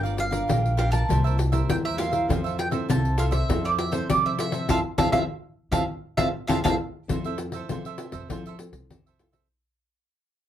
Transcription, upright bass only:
Already playing: G1
0.50 A#1
1.10 C2
1.69 E2
2.29 F2
2.90 C2
3.49 F2
4.10 F3
4.69 F2
4.98 F2
5.12 F2
5.71 F2
6.17 F2
6.49 F2
6.65 F2
7.09 F2
7.70 F3
8.13 F2
8.30 F3
8.72 C2
8.90 F2

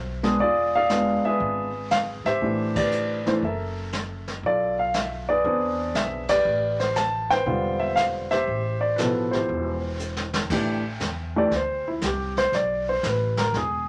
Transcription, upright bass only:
Already playing: B1
0.39 E1
1.24 muted upright bass stroke
1.40 G#1
2.25 G#1
2.42 A1
3.43 F#1
4.43 B1
5.44 E2
5.95 B1
6.45 A1
7.46 E1
8.47 A1
9.33 G#1
9.49 E1
10.50 A1
11.00 E2
11.51 D2
12.02 C2
12.52 B1
13.03 A1
13.53 E1

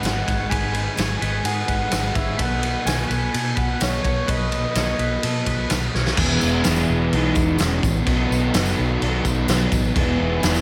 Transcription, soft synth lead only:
0.02 F#5
0.49 G#5
1.22 G#5
1.45 F#5
2.15 E5
2.41 F#5
2.86 G#5
3.12 G#5
3.58 F#5
3.83 C#5
4.30 D#5
6.21 B3
7.16 D#4
7.64 C#4
7.86 B3
9.94 B3

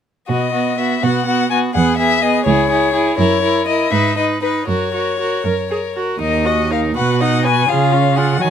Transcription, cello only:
0.29 B2
1.03 B2
1.76 E2
2.47 C#2
3.18 F#2
3.92 G#2
4.68 F#2
5.45 F#2
6.21 D#2
6.96 B2
7.70 C#3
8.41 D#3

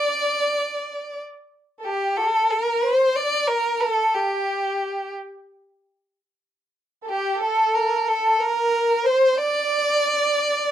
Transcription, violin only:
Already playing: D5
1.85 G4
2.17 A4
2.50 A#4
2.82 C5
3.16 D5
3.48 A#4
3.80 A4
4.15 G4
7.10 G4
7.43 A4
7.75 A#4
8.09 A4
8.41 A#4
9.06 C5
9.38 D5

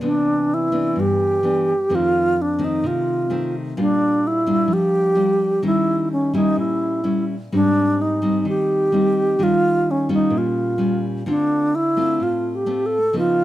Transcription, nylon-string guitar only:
0.01 C3 E3 B3 D4
0.72 E3 B3 D4
0.96 G2
1.43 E3 B3 D4
1.89 F2 D#3 A3 C4
2.59 D#3 A3 C4
2.84 C3
3.30 D#3 A3 C4
3.77 A#2 G3 D4 F4
4.46 G3 D4 F4
4.68 F3
5.15 G3 D4 F4
5.62 D#3 G3 C#4 E4
6.34 G3 C#4 E4
6.56 A#2
7.04 G3 C#4 E4
7.52 G#2 G3 C4
8.22 G3 C4 D#4
8.45 D#3
8.92 G3 C4 D#4
9.39 D#3 G3 C#4 F4
10.09 G3 C#4 F4
10.30 A#2
10.78 G3 C#4 F4
11.26 D3 A3 C4 F4
11.97 A3 C4 F4
12.20 A2
12.66 A3 C4 F4
13.13 C#3 F3 B3 D#4

